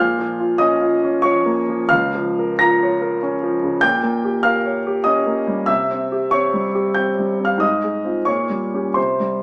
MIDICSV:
0, 0, Header, 1, 2, 480
1, 0, Start_track
1, 0, Tempo, 644468
1, 1424, Time_signature, 3, 2, 24, 8
1, 1425, Tempo, 688863
1, 1905, Tempo, 616016
1, 3825, Tempo, 637620
1, 5745, Tempo, 655022
1, 6225, Tempo, 699301
1, 7018, End_track
2, 0, Start_track
2, 0, Title_t, "Grand piano"
2, 0, Program_c, 0, 0
2, 0, Note_on_c, 0, 46, 65
2, 0, Note_on_c, 0, 77, 73
2, 0, Note_on_c, 0, 89, 104
2, 130, Control_c, 0, 64, 127
2, 140, Note_on_c, 0, 53, 48
2, 295, Note_on_c, 0, 65, 50
2, 396, Note_off_c, 0, 53, 0
2, 424, Note_off_c, 0, 77, 0
2, 434, Note_on_c, 0, 87, 92
2, 440, Note_on_c, 0, 75, 68
2, 448, Note_off_c, 0, 89, 0
2, 449, Note_on_c, 0, 61, 53
2, 551, Note_off_c, 0, 65, 0
2, 603, Note_on_c, 0, 65, 47
2, 707, Note_off_c, 0, 61, 0
2, 771, Note_on_c, 0, 61, 51
2, 865, Note_off_c, 0, 65, 0
2, 896, Note_off_c, 0, 75, 0
2, 909, Note_on_c, 0, 85, 91
2, 919, Note_on_c, 0, 73, 69
2, 923, Note_off_c, 0, 87, 0
2, 929, Note_on_c, 0, 53, 49
2, 1031, Note_off_c, 0, 61, 0
2, 1087, Note_on_c, 0, 58, 52
2, 1191, Note_off_c, 0, 53, 0
2, 1258, Note_on_c, 0, 53, 52
2, 1352, Note_off_c, 0, 58, 0
2, 1374, Note_off_c, 0, 46, 0
2, 1385, Note_off_c, 0, 73, 0
2, 1405, Note_on_c, 0, 89, 99
2, 1410, Note_off_c, 0, 85, 0
2, 1415, Note_on_c, 0, 77, 79
2, 1419, Note_on_c, 0, 37, 62
2, 1423, Note_off_c, 0, 53, 0
2, 1435, Control_c, 0, 64, 0
2, 1546, Control_c, 0, 64, 127
2, 1589, Note_on_c, 0, 53, 52
2, 1758, Note_on_c, 0, 70, 49
2, 1846, Note_off_c, 0, 53, 0
2, 1872, Note_off_c, 0, 77, 0
2, 1895, Note_on_c, 0, 94, 93
2, 1896, Note_off_c, 0, 89, 0
2, 1907, Note_on_c, 0, 82, 74
2, 1914, Note_on_c, 0, 65, 58
2, 2012, Note_off_c, 0, 70, 0
2, 2081, Note_on_c, 0, 73, 49
2, 2174, Note_off_c, 0, 65, 0
2, 2229, Note_on_c, 0, 70, 54
2, 2334, Note_off_c, 0, 73, 0
2, 2363, Note_off_c, 0, 82, 0
2, 2388, Note_off_c, 0, 94, 0
2, 2393, Note_on_c, 0, 61, 53
2, 2487, Note_off_c, 0, 70, 0
2, 2552, Note_on_c, 0, 53, 54
2, 2648, Note_off_c, 0, 61, 0
2, 2711, Note_on_c, 0, 49, 50
2, 2806, Note_off_c, 0, 53, 0
2, 2835, Note_off_c, 0, 37, 0
2, 2847, Note_on_c, 0, 91, 106
2, 2858, Note_on_c, 0, 79, 85
2, 2862, Note_on_c, 0, 46, 65
2, 2869, Note_off_c, 0, 49, 0
2, 2881, Control_c, 0, 64, 0
2, 2987, Control_c, 0, 64, 127
2, 3020, Note_on_c, 0, 58, 47
2, 3185, Note_on_c, 0, 67, 49
2, 3277, Note_off_c, 0, 58, 0
2, 3307, Note_off_c, 0, 79, 0
2, 3329, Note_on_c, 0, 89, 97
2, 3333, Note_off_c, 0, 91, 0
2, 3337, Note_on_c, 0, 77, 76
2, 3343, Note_on_c, 0, 70, 53
2, 3439, Note_off_c, 0, 67, 0
2, 3503, Note_on_c, 0, 73, 51
2, 3598, Note_off_c, 0, 70, 0
2, 3669, Note_on_c, 0, 67, 53
2, 3759, Note_off_c, 0, 73, 0
2, 3789, Note_off_c, 0, 77, 0
2, 3803, Note_on_c, 0, 87, 92
2, 3811, Note_on_c, 0, 75, 68
2, 3816, Note_off_c, 0, 89, 0
2, 3821, Note_on_c, 0, 61, 50
2, 3921, Note_off_c, 0, 67, 0
2, 3976, Note_on_c, 0, 58, 47
2, 4075, Note_off_c, 0, 61, 0
2, 4134, Note_on_c, 0, 55, 49
2, 4233, Note_off_c, 0, 58, 0
2, 4263, Note_off_c, 0, 75, 0
2, 4265, Note_off_c, 0, 46, 0
2, 4274, Note_on_c, 0, 88, 97
2, 4280, Note_on_c, 0, 76, 73
2, 4288, Note_on_c, 0, 48, 60
2, 4289, Note_off_c, 0, 87, 0
2, 4296, Note_off_c, 0, 55, 0
2, 4311, Control_c, 0, 64, 0
2, 4437, Control_c, 0, 64, 127
2, 4461, Note_on_c, 0, 60, 45
2, 4618, Note_on_c, 0, 67, 47
2, 4718, Note_off_c, 0, 60, 0
2, 4743, Note_off_c, 0, 76, 0
2, 4762, Note_on_c, 0, 85, 95
2, 4769, Note_off_c, 0, 88, 0
2, 4772, Note_on_c, 0, 73, 75
2, 4780, Note_on_c, 0, 60, 50
2, 4877, Note_off_c, 0, 67, 0
2, 4932, Note_on_c, 0, 55, 46
2, 5037, Note_off_c, 0, 60, 0
2, 5092, Note_on_c, 0, 67, 46
2, 5192, Note_off_c, 0, 55, 0
2, 5226, Note_off_c, 0, 73, 0
2, 5239, Note_on_c, 0, 91, 74
2, 5244, Note_on_c, 0, 79, 58
2, 5251, Note_off_c, 0, 85, 0
2, 5254, Note_on_c, 0, 60, 45
2, 5353, Note_off_c, 0, 67, 0
2, 5422, Note_on_c, 0, 55, 44
2, 5515, Note_off_c, 0, 60, 0
2, 5581, Note_on_c, 0, 60, 42
2, 5589, Note_off_c, 0, 79, 0
2, 5612, Note_off_c, 0, 91, 0
2, 5618, Note_on_c, 0, 89, 77
2, 5626, Note_on_c, 0, 77, 62
2, 5679, Note_off_c, 0, 55, 0
2, 5708, Note_off_c, 0, 48, 0
2, 5714, Note_on_c, 0, 44, 57
2, 5732, Note_on_c, 0, 87, 81
2, 5737, Note_off_c, 0, 77, 0
2, 5740, Note_on_c, 0, 75, 65
2, 5741, Note_off_c, 0, 89, 0
2, 5743, Note_off_c, 0, 60, 0
2, 5758, Control_c, 0, 64, 0
2, 5871, Control_c, 0, 64, 127
2, 5909, Note_on_c, 0, 56, 38
2, 6059, Note_on_c, 0, 60, 36
2, 6066, Note_on_c, 0, 65, 38
2, 6162, Note_off_c, 0, 56, 0
2, 6193, Note_off_c, 0, 75, 0
2, 6195, Note_off_c, 0, 44, 0
2, 6207, Note_off_c, 0, 60, 0
2, 6211, Note_off_c, 0, 65, 0
2, 6211, Note_on_c, 0, 85, 76
2, 6219, Note_off_c, 0, 87, 0
2, 6220, Note_on_c, 0, 73, 57
2, 6230, Note_on_c, 0, 46, 53
2, 6236, Control_c, 0, 64, 0
2, 6354, Control_c, 0, 64, 127
2, 6381, Note_on_c, 0, 55, 37
2, 6546, Note_on_c, 0, 61, 36
2, 6552, Note_on_c, 0, 67, 38
2, 6636, Note_off_c, 0, 55, 0
2, 6671, Note_off_c, 0, 73, 0
2, 6686, Note_on_c, 0, 84, 67
2, 6687, Note_off_c, 0, 61, 0
2, 6689, Note_off_c, 0, 46, 0
2, 6690, Note_off_c, 0, 67, 0
2, 6694, Note_off_c, 0, 85, 0
2, 6695, Note_on_c, 0, 72, 51
2, 6701, Note_on_c, 0, 48, 47
2, 6714, Control_c, 0, 64, 0
2, 6843, Control_c, 0, 64, 127
2, 6862, Note_on_c, 0, 55, 36
2, 7018, Note_off_c, 0, 48, 0
2, 7018, Note_off_c, 0, 55, 0
2, 7018, Note_off_c, 0, 72, 0
2, 7018, Note_off_c, 0, 84, 0
2, 7018, End_track
0, 0, End_of_file